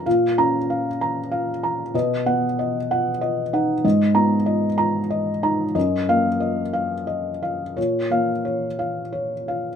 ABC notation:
X:1
M:6/8
L:1/8
Q:3/8=62
K:Bbphr
V:1 name="Felt piano"
f2 f b f b | ^d2 d ^f d f | e2 e b e b | e2 e f e f |
d2 d f d f |]
V:2 name="Felt piano"
B,, [Db]2 z3 | =B,, [=B,^f]2 z2 ^D | A,, [Cb]2 z2 E | G,, [B,f]2 z3 |
B,, [B,f]2 z3 |]